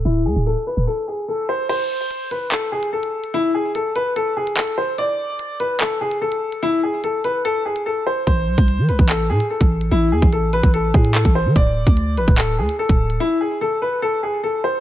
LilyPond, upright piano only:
\new Staff \with { instrumentName = "Upright piano" } { \time 4/4 \key d \dorian \tempo 4 = 146 e'8 gis'8 a'8 b'8 a'8 gis'8 a'8 c''8 | c''4. b'8 a'8 gis'8 a'4 | e'8 gis'8 a'8 b'8 a'8 gis'8 a'8 c''8 | d''4. b'8 a'8 gis'8 a'4 |
e'8 gis'8 a'8 b'8 a'8 gis'8 a'8 c''8 | c''4. b'8 a'8 gis'8 a'4 | e'8 gis'8 a'8 b'8 a'8 gis'8 a'8 c''8 | d''4. b'8 a'8 gis'8 a'4 |
e'8 gis'8 a'8 b'8 a'8 gis'8 a'8 c''8 | }